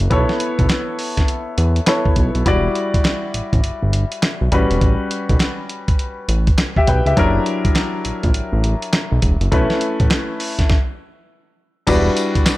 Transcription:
0.00 F#1, closed hi-hat
0.10 B1 B3 E4 A4 C#5, kick, closed hi-hat
0.29 snare
0.40 closed hi-hat
0.59 B1, kick, closed hi-hat
0.70 snare, clap, closed hi-hat
0.99 open hi-hat
1.17 kick, snare, closed hi-hat
1.28 closed hi-hat
1.58 E2, closed hi-hat
1.76 closed hi-hat
1.87 B3 E4 A4 C#5, snare, clap, closed hi-hat
2.06 kick
2.16 B1, kick, closed hi-hat
2.35 B1, closed hi-hat
2.46 E1 G3 E4 F#4 D5, kick, closed hi-hat
2.75 closed hi-hat
2.94 A1, kick, closed hi-hat
3.05 snare, clap, closed hi-hat
3.34 A1, closed hi-hat
3.53 A1, kick, closed hi-hat
3.64 G1, closed hi-hat
3.83 G1
3.93 closed hi-hat
4.12 closed hi-hat
4.23 snare, clap, closed hi-hat
4.41 B1
4.52 A1 G3 C#4 F#4 B4, kick, closed hi-hat
4.71 E1, closed hi-hat
4.81 A1, kick, closed hi-hat
5.11 closed hi-hat
5.29 B1, kick, closed hi-hat
5.40 snare, clap, closed hi-hat
5.70 closed hi-hat
5.88 kick, closed hi-hat
5.99 closed hi-hat
6.28 A1, closed hi-hat
6.47 kick, closed hi-hat
6.58 snare, clap, closed hi-hat
6.76 G4 E5, kick
6.87 B1 B4 G5, kick, closed hi-hat
7.06 C#2 G4 E5, closed hi-hat
7.17 F#1 F#3 D4 E4 A#4, kick, closed hi-hat
7.46 closed hi-hat
7.65 A#1, kick, closed hi-hat
7.76 snare, clap, closed hi-hat
8.05 A#1, closed hi-hat
8.23 A#1, kick, closed hi-hat
8.34 A1, closed hi-hat
8.53 A1
8.64 closed hi-hat
8.82 closed hi-hat
8.93 snare, clap, closed hi-hat
9.12 B1
9.22 E1, kick, closed hi-hat
9.41 F#1, closed hi-hat
9.52 B1 A3 C#4 E4 B4, kick, closed hi-hat
9.70 snare
9.81 closed hi-hat
10.00 A1, kick, closed hi-hat
10.11 snare, clap, closed hi-hat
10.40 open hi-hat
10.59 kick, snare, closed hi-hat
10.70 kick, snare
11.87 E1 G3 D4 E4 F#4 B4, kick, closed hi-hat, crash, tambourine
12.17 closed hi-hat, tambourine
12.35 A1, kick, closed hi-hat
12.46 snare, clap, closed hi-hat, tambourine

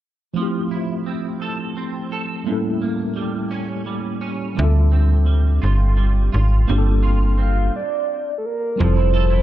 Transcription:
0.34 F3 A3
0.38 C4 E4
0.42 G4
0.71 E4
1.06 C4
1.42 A4
1.77 C4
2.12 A4
2.44 A2 G3 A#3 C#4
2.50 E4 A4
2.82 A#3
3.16 G3
3.51 C#4
3.86 G3
4.21 C#4
4.55 D2 D3 G3 C4
4.59 F4 E5
4.64 A4
4.92 C4
5.26 G3
5.62 G1 F4
5.97 G3
6.32 G#1 F4
6.68 G1 G3 A#3 C4 D4 F4
6.72 G4
6.78 A4
7.03 F4
7.38 C4 F5
7.76 D5
8.38 A4
8.46 A#4
8.76 F3 G3 C4 C5
8.80 F1 F3 E4
8.84 A4
8.96 E4
9.14 A4
9.30 E4

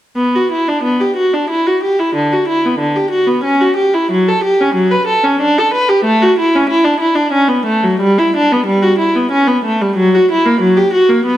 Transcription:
0.16 B3
0.35 F#4
0.52 E4
0.68 D4
0.83 B3
1.00 G4
1.16 F#4
1.34 D4
1.50 E4
1.66 F#4
1.83 G4
1.99 E4
2.15 D3
2.32 F#4
2.48 E4
2.66 B3
2.79 D3
2.96 G4
3.11 F#4
3.27 B3
3.44 C#4
3.61 F#4
3.76 G4
3.94 E4
4.11 F#3
4.29 A4
4.44 G4
4.61 C#4
4.74 F#3
4.91 B4
5.07 A4
5.24 C#4
5.41 D4
5.58 A4
5.73 B4
5.89 G4
6.04 A3
6.22 F#4
6.39 E4
6.55 C#4
6.69 E4
6.84 D4
7.00 E4
7.15 D4
7.32 C#4
7.48 B3
7.66 A3
7.83 F#3
8.00 G3
8.18 E4
8.36 D4
8.52 B3
8.66 G3
8.82 F#4
8.99 E4
9.16 B3
9.31 C#4
9.47 B3
9.65 A3
9.81 G3
9.96 F#3
10.14 F#4
10.31 E4
10.46 A#3
10.61 F#3
10.77 G4
10.93 F#4
11.09 A#3
11.25 B3

